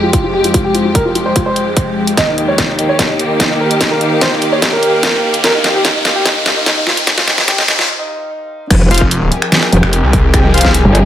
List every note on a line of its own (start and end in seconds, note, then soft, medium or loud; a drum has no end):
0.00 2.13 F2 medium
0.00 2.13 F3 medium
0.00 2.17 F3 medium
0.00 2.13 G#3 medium
0.00 2.17 G#3 medium
0.00 2.70 D#4 medium
0.00 0.10 F4 medium
0.00 2.13 G4 medium
0.00 7.89 C5 medium
0.00 riser medium
0.13 0.21 F4 medium
0.13 kick loud
0.13 closed hi-hat medium
0.24 0.31 F4 medium
0.34 0.41 G4 medium
0.44 0.51 F4 medium
0.44 closed hi-hat medium
0.54 0.62 F4 medium
0.54 kick medium
0.54 closed hi-hat medium
0.64 0.72 G4 medium
0.74 0.82 F4 medium
0.74 closed hi-hat soft
0.85 0.92 F4 medium
0.95 1.02 A#4 medium
0.95 kick loud
0.95 closed hi-hat medium
1.05 1.12 F4 medium
1.15 1.23 F4 medium
1.15 closed hi-hat soft
1.26 1.33 C5 medium
1.36 1.43 F4 medium
1.36 kick medium
1.36 closed hi-hat medium
1.46 2.09 C5 medium
1.56 closed hi-hat soft
1.77 kick loud
1.77 closed hi-hat medium
2.07 closed hi-hat medium
2.17 7.85 D#2 medium
2.17 7.85 D#3 medium
2.17 7.89 D#3 medium
2.17 7.85 A#3 medium
2.17 7.85 G4 medium
2.17 2.25 D#5 medium
2.17 kick loud
2.17 snare soft
2.17 closed hi-hat medium
2.28 2.35 D#4 medium
2.35 2.45 D#4 medium
2.35 7.89 G4 medium
2.35 closed hi-hat soft
2.48 2.55 C#5 medium
2.58 2.66 D#4 medium
2.58 kick medium
2.58 snare soft
2.58 closed hi-hat medium
2.69 2.76 D#4 medium
2.74 7.89 F5 medium
2.79 2.86 D#4 medium
2.79 closed hi-hat soft
2.89 2.96 C#5 medium
2.99 3.06 D#4 medium
2.99 kick loud
2.99 snare soft
2.99 closed hi-hat medium
3.09 3.17 D#4 medium
3.19 closed hi-hat soft
3.30 3.37 D#4 medium
3.40 3.47 D#4 medium
3.40 kick medium
3.40 snare medium
3.40 closed hi-hat medium
3.50 3.57 D#4 medium
3.60 3.68 A#4 medium
3.71 3.78 D#4 medium
3.71 closed hi-hat medium
3.81 3.88 D#4 medium
3.81 kick loud
3.81 snare medium
3.81 closed hi-hat medium
3.91 3.98 A#4 medium
4.01 4.08 D#4 medium
4.01 closed hi-hat soft
4.12 4.19 D#4 medium
4.21 4.29 C5 medium
4.21 kick loud
4.21 snare medium
4.21 closed hi-hat medium
4.32 4.39 D#4 medium
4.42 4.49 D#4 medium
4.42 closed hi-hat soft
4.52 4.59 C#5 medium
4.62 4.70 D#4 medium
4.62 kick loud
4.62 snare medium
4.62 closed hi-hat medium
4.73 5.36 A#4 medium
4.83 closed hi-hat soft
5.03 kick loud
5.03 snare medium
5.03 closed hi-hat medium
5.34 closed hi-hat medium
5.44 5.51 A#4 loud
5.44 kick loud
5.44 snare medium
5.44 closed hi-hat medium
5.54 5.61 D#4 medium
5.64 5.72 D#4 medium
5.64 snare medium
5.64 closed hi-hat medium
5.75 5.82 G4 medium
5.85 5.92 D#4 medium
5.85 kick loud
5.85 snare medium
5.85 closed hi-hat medium
5.95 6.02 D#4 medium
6.05 6.13 D#4 medium
6.05 snare medium
6.05 closed hi-hat medium
6.16 6.23 G4 medium
6.25 6.33 D#4 medium
6.25 kick loud
6.25 snare medium
6.25 closed hi-hat medium
6.36 6.43 D#4 medium
6.46 snare medium
6.46 closed hi-hat medium
6.56 6.63 D#4 medium
6.66 6.74 D#4 medium
6.66 kick loud
6.66 snare medium
6.66 closed hi-hat medium
6.77 6.84 D#4 medium
6.87 6.94 F4 medium
6.87 snare medium
6.97 7.04 D#4 medium
6.97 closed hi-hat medium
7.07 7.15 D#4 medium
7.07 kick loud
7.07 snare medium
7.07 closed hi-hat medium
7.18 7.25 F4 medium
7.18 snare medium
7.18 closed hi-hat soft
7.28 7.35 D#4 medium
7.28 snare medium
7.28 closed hi-hat medium
7.38 7.45 D#4 medium
7.38 snare medium
7.38 closed hi-hat soft
7.48 7.55 G4 medium
7.48 kick loud
7.48 snare medium
7.48 closed hi-hat medium
7.58 7.66 D#4 medium
7.58 snare medium
7.68 7.76 D#4 medium
7.68 snare loud
7.68 closed hi-hat medium
7.79 7.86 F4 medium
7.79 snare medium
7.89 7.96 D#4 medium
7.99 8.62 D#4 medium
8.70 8.89 F1 loud
8.70 11.05 F3 medium
8.70 11.05 C4 medium
8.70 11.05 G4 medium
8.70 11.05 G#4 medium
8.70 11.05 A#4 medium
8.70 finger snap medium
8.70 kick loud
8.70 closed hi-hat medium
8.70 crash loud
8.79 11.05 D#5 medium
8.91 9.30 F1 medium
8.91 9.02 F4 loud
8.91 9.02 C5 medium
8.91 9.02 F5 loud
8.91 closed hi-hat soft
8.94 closed hi-hat medium
8.98 kick medium
8.98 closed hi-hat medium
9.11 closed hi-hat medium
9.32 closed hi-hat medium
9.42 finger snap medium
9.52 snare loud
9.52 closed hi-hat medium
9.63 finger snap medium
9.72 9.81 F1 loud
9.72 closed hi-hat medium
9.83 10.02 F1 loud
9.83 finger snap medium
9.93 closed hi-hat medium
10.03 10.83 C2 medium
10.13 kick loud
10.13 closed hi-hat medium
10.34 finger snap medium
10.34 kick loud
10.34 closed hi-hat medium
10.54 10.72 F4 loud
10.54 10.72 C5 medium
10.54 10.72 F5 loud
10.54 closed hi-hat soft
10.58 closed hi-hat medium
10.61 kick medium
10.61 snare soft
10.61 closed hi-hat medium
10.74 closed hi-hat medium
10.85 11.04 G1 loud
10.95 closed hi-hat medium